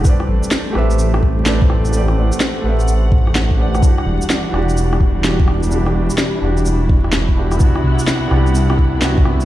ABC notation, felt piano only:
X:1
M:4/4
L:1/8
Q:"Swing 16ths" 1/4=127
K:Em
V:1 name="Felt piano"
[A,GBcd]3 [A,GBce]3 [A,GBcd]2 | [A,GBcd]3 [A,GBce]4 [A,GBcd] | [E,DFG]3 [E,DFG]3 [E,DFG]2 | [E,DFG]3 [E,DFG]4 [E,DFG] |
[C,B,DEF]3 [C,B,DEG]3 [C,B,DEF]2 |]